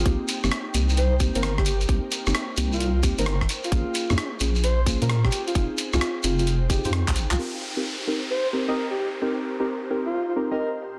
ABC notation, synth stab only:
X:1
M:4/4
L:1/16
Q:"Swing 16ths" 1/4=131
K:Cphr
V:1 name="Synth stab"
[B,CEG]3 [B,CEG] z2 [B,CEG] z3 [B,CEG] [B,CEc] z4 | [B,CEG]3 [B,CEG] z2 [B,CEG] z3 [B,CEG] [B,CEc] z4 | [B,DFA]3 [B,DFA] z2 [B,DFA] z3 [B,DFA] [B,DFc] z4 | [CEFA]3 [CEFA] z2 [CEFA] z3 [CEFA] [CEFc] z4 |
[CEGB]3 [CEGB] z2 [CEGB] z3 [CEGB] [CEGe] z4 | [CEGB]3 [CEGB] z2 [CEGB] z3 [CEGB] [CEGe] z4 |]